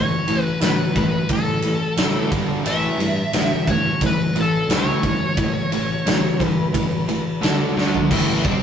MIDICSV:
0, 0, Header, 1, 6, 480
1, 0, Start_track
1, 0, Tempo, 680272
1, 1876, Time_signature, 4, 2, 24, 8
1, 6089, End_track
2, 0, Start_track
2, 0, Title_t, "Lead electric guitar"
2, 0, Program_c, 0, 29
2, 0, Note_on_c, 0, 73, 97
2, 301, Note_off_c, 0, 73, 0
2, 301, Note_on_c, 0, 71, 97
2, 411, Note_off_c, 0, 71, 0
2, 452, Note_on_c, 0, 71, 78
2, 934, Note_off_c, 0, 71, 0
2, 937, Note_on_c, 0, 69, 73
2, 1618, Note_off_c, 0, 69, 0
2, 1884, Note_on_c, 0, 76, 97
2, 2608, Note_off_c, 0, 76, 0
2, 2611, Note_on_c, 0, 73, 93
2, 2828, Note_off_c, 0, 73, 0
2, 2866, Note_on_c, 0, 71, 90
2, 3098, Note_off_c, 0, 71, 0
2, 3109, Note_on_c, 0, 69, 73
2, 3340, Note_off_c, 0, 69, 0
2, 3361, Note_on_c, 0, 73, 82
2, 4554, Note_off_c, 0, 73, 0
2, 4554, Note_on_c, 0, 71, 82
2, 5231, Note_off_c, 0, 71, 0
2, 6089, End_track
3, 0, Start_track
3, 0, Title_t, "Overdriven electric guitar"
3, 0, Program_c, 1, 29
3, 0, Note_on_c, 1, 45, 73
3, 0, Note_on_c, 1, 52, 76
3, 179, Note_off_c, 1, 45, 0
3, 180, Note_off_c, 1, 52, 0
3, 206, Note_on_c, 1, 45, 72
3, 210, Note_on_c, 1, 52, 70
3, 418, Note_off_c, 1, 45, 0
3, 420, Note_off_c, 1, 52, 0
3, 455, Note_on_c, 1, 45, 73
3, 456, Note_on_c, 1, 52, 80
3, 662, Note_off_c, 1, 45, 0
3, 663, Note_off_c, 1, 52, 0
3, 684, Note_on_c, 1, 52, 73
3, 686, Note_on_c, 1, 45, 66
3, 896, Note_off_c, 1, 52, 0
3, 897, Note_off_c, 1, 45, 0
3, 927, Note_on_c, 1, 45, 66
3, 929, Note_on_c, 1, 52, 79
3, 1138, Note_off_c, 1, 45, 0
3, 1139, Note_off_c, 1, 52, 0
3, 1167, Note_on_c, 1, 45, 74
3, 1172, Note_on_c, 1, 52, 76
3, 1378, Note_off_c, 1, 45, 0
3, 1380, Note_off_c, 1, 52, 0
3, 1405, Note_on_c, 1, 45, 96
3, 1410, Note_on_c, 1, 52, 96
3, 1417, Note_on_c, 1, 57, 99
3, 1626, Note_off_c, 1, 45, 0
3, 1629, Note_off_c, 1, 52, 0
3, 1632, Note_off_c, 1, 57, 0
3, 1634, Note_on_c, 1, 43, 82
3, 1638, Note_on_c, 1, 50, 91
3, 1641, Note_on_c, 1, 55, 86
3, 1861, Note_off_c, 1, 43, 0
3, 1863, Note_off_c, 1, 50, 0
3, 1864, Note_off_c, 1, 55, 0
3, 1882, Note_on_c, 1, 45, 80
3, 1888, Note_on_c, 1, 52, 87
3, 1892, Note_on_c, 1, 57, 88
3, 2105, Note_off_c, 1, 45, 0
3, 2108, Note_off_c, 1, 52, 0
3, 2110, Note_off_c, 1, 57, 0
3, 2127, Note_on_c, 1, 45, 68
3, 2133, Note_on_c, 1, 52, 75
3, 2338, Note_off_c, 1, 45, 0
3, 2341, Note_off_c, 1, 52, 0
3, 2354, Note_on_c, 1, 45, 73
3, 2358, Note_on_c, 1, 52, 75
3, 2571, Note_off_c, 1, 45, 0
3, 2573, Note_off_c, 1, 52, 0
3, 2595, Note_on_c, 1, 45, 70
3, 2599, Note_on_c, 1, 52, 82
3, 2812, Note_off_c, 1, 45, 0
3, 2814, Note_off_c, 1, 52, 0
3, 2844, Note_on_c, 1, 45, 69
3, 2844, Note_on_c, 1, 52, 79
3, 3056, Note_off_c, 1, 45, 0
3, 3056, Note_off_c, 1, 52, 0
3, 3076, Note_on_c, 1, 45, 72
3, 3080, Note_on_c, 1, 52, 81
3, 3293, Note_off_c, 1, 45, 0
3, 3295, Note_off_c, 1, 52, 0
3, 3324, Note_on_c, 1, 45, 94
3, 3329, Note_on_c, 1, 52, 97
3, 3331, Note_on_c, 1, 57, 104
3, 3546, Note_off_c, 1, 45, 0
3, 3549, Note_off_c, 1, 52, 0
3, 3550, Note_off_c, 1, 57, 0
3, 3575, Note_on_c, 1, 45, 64
3, 3576, Note_on_c, 1, 52, 77
3, 3782, Note_off_c, 1, 45, 0
3, 3782, Note_off_c, 1, 52, 0
3, 3799, Note_on_c, 1, 52, 79
3, 3800, Note_on_c, 1, 45, 73
3, 4014, Note_off_c, 1, 52, 0
3, 4015, Note_off_c, 1, 45, 0
3, 4037, Note_on_c, 1, 52, 75
3, 4039, Note_on_c, 1, 45, 68
3, 4253, Note_off_c, 1, 52, 0
3, 4254, Note_off_c, 1, 45, 0
3, 4276, Note_on_c, 1, 45, 74
3, 4279, Note_on_c, 1, 52, 81
3, 4493, Note_off_c, 1, 45, 0
3, 4494, Note_off_c, 1, 52, 0
3, 4510, Note_on_c, 1, 45, 72
3, 4514, Note_on_c, 1, 52, 81
3, 4730, Note_off_c, 1, 45, 0
3, 4731, Note_off_c, 1, 52, 0
3, 4749, Note_on_c, 1, 45, 67
3, 4756, Note_on_c, 1, 52, 79
3, 4969, Note_off_c, 1, 45, 0
3, 4973, Note_off_c, 1, 52, 0
3, 4996, Note_on_c, 1, 45, 66
3, 5000, Note_on_c, 1, 52, 84
3, 5213, Note_off_c, 1, 45, 0
3, 5215, Note_off_c, 1, 52, 0
3, 5233, Note_on_c, 1, 50, 92
3, 5236, Note_on_c, 1, 57, 89
3, 5244, Note_on_c, 1, 62, 103
3, 5461, Note_off_c, 1, 50, 0
3, 5462, Note_off_c, 1, 57, 0
3, 5466, Note_off_c, 1, 62, 0
3, 5484, Note_on_c, 1, 50, 77
3, 5487, Note_on_c, 1, 57, 90
3, 5492, Note_on_c, 1, 62, 98
3, 5706, Note_off_c, 1, 50, 0
3, 5707, Note_off_c, 1, 57, 0
3, 5710, Note_off_c, 1, 62, 0
3, 5732, Note_on_c, 1, 45, 98
3, 5736, Note_on_c, 1, 52, 96
3, 5738, Note_on_c, 1, 57, 107
3, 5957, Note_off_c, 1, 45, 0
3, 5959, Note_off_c, 1, 52, 0
3, 5960, Note_off_c, 1, 57, 0
3, 5977, Note_on_c, 1, 48, 91
3, 5980, Note_on_c, 1, 55, 95
3, 5983, Note_on_c, 1, 60, 106
3, 6089, Note_off_c, 1, 48, 0
3, 6089, Note_off_c, 1, 55, 0
3, 6089, Note_off_c, 1, 60, 0
3, 6089, End_track
4, 0, Start_track
4, 0, Title_t, "Overdriven electric guitar"
4, 0, Program_c, 2, 29
4, 427, Note_on_c, 2, 52, 73
4, 648, Note_off_c, 2, 52, 0
4, 6089, End_track
5, 0, Start_track
5, 0, Title_t, "Picked electric bass"
5, 0, Program_c, 3, 34
5, 0, Note_on_c, 3, 33, 87
5, 113, Note_off_c, 3, 33, 0
5, 191, Note_on_c, 3, 33, 82
5, 353, Note_off_c, 3, 33, 0
5, 432, Note_on_c, 3, 33, 84
5, 593, Note_off_c, 3, 33, 0
5, 677, Note_on_c, 3, 33, 80
5, 836, Note_off_c, 3, 33, 0
5, 911, Note_on_c, 3, 33, 89
5, 1231, Note_off_c, 3, 33, 0
5, 1393, Note_on_c, 3, 33, 89
5, 1553, Note_off_c, 3, 33, 0
5, 1635, Note_on_c, 3, 31, 86
5, 1794, Note_off_c, 3, 31, 0
5, 1864, Note_on_c, 3, 33, 84
5, 2027, Note_off_c, 3, 33, 0
5, 2105, Note_on_c, 3, 43, 84
5, 2268, Note_off_c, 3, 43, 0
5, 2344, Note_on_c, 3, 33, 87
5, 2507, Note_off_c, 3, 33, 0
5, 2590, Note_on_c, 3, 40, 80
5, 2751, Note_off_c, 3, 40, 0
5, 2830, Note_on_c, 3, 33, 87
5, 2991, Note_off_c, 3, 33, 0
5, 3052, Note_on_c, 3, 33, 90
5, 3220, Note_off_c, 3, 33, 0
5, 3299, Note_on_c, 3, 37, 82
5, 3464, Note_off_c, 3, 37, 0
5, 3549, Note_on_c, 3, 33, 80
5, 3711, Note_off_c, 3, 33, 0
5, 3785, Note_on_c, 3, 33, 85
5, 3949, Note_off_c, 3, 33, 0
5, 4029, Note_on_c, 3, 33, 79
5, 4191, Note_off_c, 3, 33, 0
5, 4269, Note_on_c, 3, 33, 89
5, 4431, Note_off_c, 3, 33, 0
5, 4516, Note_on_c, 3, 33, 80
5, 4676, Note_off_c, 3, 33, 0
5, 4755, Note_on_c, 3, 33, 86
5, 5074, Note_off_c, 3, 33, 0
5, 5231, Note_on_c, 3, 38, 88
5, 5392, Note_off_c, 3, 38, 0
5, 5469, Note_on_c, 3, 38, 80
5, 5631, Note_off_c, 3, 38, 0
5, 5719, Note_on_c, 3, 33, 95
5, 5941, Note_off_c, 3, 33, 0
5, 5955, Note_on_c, 3, 36, 94
5, 6089, Note_off_c, 3, 36, 0
5, 6089, End_track
6, 0, Start_track
6, 0, Title_t, "Drums"
6, 195, Note_on_c, 9, 51, 71
6, 265, Note_off_c, 9, 51, 0
6, 432, Note_on_c, 9, 51, 89
6, 441, Note_on_c, 9, 38, 103
6, 503, Note_off_c, 9, 51, 0
6, 511, Note_off_c, 9, 38, 0
6, 675, Note_on_c, 9, 36, 82
6, 675, Note_on_c, 9, 51, 65
6, 745, Note_off_c, 9, 51, 0
6, 746, Note_off_c, 9, 36, 0
6, 909, Note_on_c, 9, 51, 88
6, 913, Note_on_c, 9, 36, 79
6, 979, Note_off_c, 9, 51, 0
6, 984, Note_off_c, 9, 36, 0
6, 1145, Note_on_c, 9, 51, 70
6, 1215, Note_off_c, 9, 51, 0
6, 1392, Note_on_c, 9, 51, 90
6, 1401, Note_on_c, 9, 38, 104
6, 1463, Note_off_c, 9, 51, 0
6, 1471, Note_off_c, 9, 38, 0
6, 1635, Note_on_c, 9, 36, 96
6, 1635, Note_on_c, 9, 51, 69
6, 1706, Note_off_c, 9, 36, 0
6, 1706, Note_off_c, 9, 51, 0
6, 1874, Note_on_c, 9, 51, 90
6, 1944, Note_off_c, 9, 51, 0
6, 2117, Note_on_c, 9, 51, 65
6, 2188, Note_off_c, 9, 51, 0
6, 2351, Note_on_c, 9, 51, 90
6, 2359, Note_on_c, 9, 38, 103
6, 2421, Note_off_c, 9, 51, 0
6, 2430, Note_off_c, 9, 38, 0
6, 2593, Note_on_c, 9, 36, 82
6, 2597, Note_on_c, 9, 51, 63
6, 2663, Note_off_c, 9, 36, 0
6, 2667, Note_off_c, 9, 51, 0
6, 2829, Note_on_c, 9, 51, 80
6, 2831, Note_on_c, 9, 36, 85
6, 2900, Note_off_c, 9, 51, 0
6, 2902, Note_off_c, 9, 36, 0
6, 3073, Note_on_c, 9, 51, 57
6, 3144, Note_off_c, 9, 51, 0
6, 3314, Note_on_c, 9, 51, 75
6, 3322, Note_on_c, 9, 38, 98
6, 3384, Note_off_c, 9, 51, 0
6, 3393, Note_off_c, 9, 38, 0
6, 3550, Note_on_c, 9, 51, 59
6, 3552, Note_on_c, 9, 36, 81
6, 3621, Note_off_c, 9, 51, 0
6, 3622, Note_off_c, 9, 36, 0
6, 3788, Note_on_c, 9, 51, 85
6, 3791, Note_on_c, 9, 36, 98
6, 3859, Note_off_c, 9, 51, 0
6, 3862, Note_off_c, 9, 36, 0
6, 4036, Note_on_c, 9, 51, 67
6, 4106, Note_off_c, 9, 51, 0
6, 4280, Note_on_c, 9, 51, 87
6, 4289, Note_on_c, 9, 38, 107
6, 4351, Note_off_c, 9, 51, 0
6, 4359, Note_off_c, 9, 38, 0
6, 4517, Note_on_c, 9, 36, 77
6, 4523, Note_on_c, 9, 51, 68
6, 4587, Note_off_c, 9, 36, 0
6, 4594, Note_off_c, 9, 51, 0
6, 4758, Note_on_c, 9, 36, 81
6, 4759, Note_on_c, 9, 51, 86
6, 4828, Note_off_c, 9, 36, 0
6, 4830, Note_off_c, 9, 51, 0
6, 5000, Note_on_c, 9, 51, 65
6, 5071, Note_off_c, 9, 51, 0
6, 5243, Note_on_c, 9, 51, 89
6, 5251, Note_on_c, 9, 38, 103
6, 5314, Note_off_c, 9, 51, 0
6, 5322, Note_off_c, 9, 38, 0
6, 5490, Note_on_c, 9, 38, 59
6, 5560, Note_off_c, 9, 38, 0
6, 5605, Note_on_c, 9, 43, 87
6, 5675, Note_off_c, 9, 43, 0
6, 5722, Note_on_c, 9, 36, 99
6, 5724, Note_on_c, 9, 49, 112
6, 5724, Note_on_c, 9, 57, 82
6, 5792, Note_off_c, 9, 36, 0
6, 5794, Note_off_c, 9, 49, 0
6, 5794, Note_off_c, 9, 57, 0
6, 5961, Note_on_c, 9, 36, 109
6, 5964, Note_on_c, 9, 57, 62
6, 6031, Note_off_c, 9, 36, 0
6, 6034, Note_off_c, 9, 57, 0
6, 6089, End_track
0, 0, End_of_file